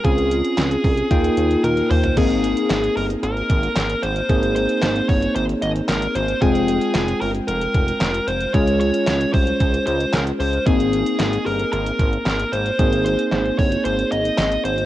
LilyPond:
<<
  \new Staff \with { instrumentName = "Lead electric guitar" } { \time 4/4 \key aes \major \tempo 4 = 113 aes'2. bes'8 c''8 | aes'4. bes'8 bes'4. c''8~ | c''8 c''8 c''8 des''8 c''8 ees''8 bes'8 c''8 | aes'4. bes'8 bes'4. c''8 |
des''8 des''4 c''4 c''8 bes'8 c''8 | aes'4. bes'8 bes'4. c''8~ | c''8 c''4 des''8 c''8 ees''8 ees''8 c''8 | }
  \new Staff \with { instrumentName = "Tine electric piano" } { \time 4/4 \key aes \major <c' des' f' aes'>2 <bes ees' f' g''>2 | <bes c' ees' aes'>1 | <bes c' ees' aes'>1 | <aes c' f' g''>1 |
<aes des' f' aes'>1 | <bes c' ees' aes'>1 | <bes c' ees' aes'>1 | }
  \new Staff \with { instrumentName = "Analog synth bass" } { \clef bass \time 4/4 \key aes \major des,4 des,8 c,8 ees,8 ees,8 ees,8 ees,8 | aes,,4 aes,,8 g,,8 aes,,8 aes,,8 aes,,8 aes,,8 | aes,,4 aes,,8 g,,8 aes,,8 aes,,8 aes,,8 aes,,8 | f,,4 f,,8 g,,8 f,,8 f,,8 f,,8 f,,8 |
des,4 des,8 c,8 des,8 des,8 des,8 des,8 | aes,,4 aes,,8 g,,8 aes,,8 aes,,8 aes,,8 aes,,8 | aes,,4 aes,,8 g,,8 aes,,8 aes,,8 aes,,8 aes,,8 | }
  \new DrumStaff \with { instrumentName = "Drums" } \drummode { \time 4/4 <hh bd>16 hh16 hh16 hh16 <hc hh sn>16 hh16 <hho bd>16 hh16 <hh bd>16 hh16 hh16 hh16 <hh tommh>16 hh16 <hho toml>16 <hh tomfh>16 | <cymc hh bd>16 hh16 hh16 hh16 <hc hh sn>16 hh16 hho16 hh16 hh16 hh16 <hh bd>16 hh16 <hc hh sn>16 hh16 hh16 hh16 | <hh bd>16 hh16 hh16 hh16 <hc hh sn>16 hh16 <hho bd>16 hh16 hh16 hh16 hh16 hh16 <hc hh sn>16 hh16 hh16 hh16 | <hh bd>16 hh16 hh16 hh16 <hc hh sn>16 hh16 hho16 hh16 hh16 hh16 <hh bd>16 hh16 <hc hh sn>16 hh16 hh16 hh16 |
<hh bd>16 hh16 hh16 hh16 <hc hh sn>16 hh16 <hho bd>16 hh16 <hh bd>16 hh16 hh16 hh16 <hc hh sn>16 hh16 hho16 hh16 | <hh bd>16 hh16 hh16 hh16 <hc hh sn>16 hh16 hho16 hh16 hh16 hh16 <hh bd>16 hh16 <hc hh sn>16 hh16 hh16 hh16 | <hh bd>16 hh16 hh16 hh16 <hc hh sn>16 hh16 <hho bd>16 hh16 hh16 hh16 hh16 hh16 <hc hh sn>16 hh16 hh16 hh16 | }
>>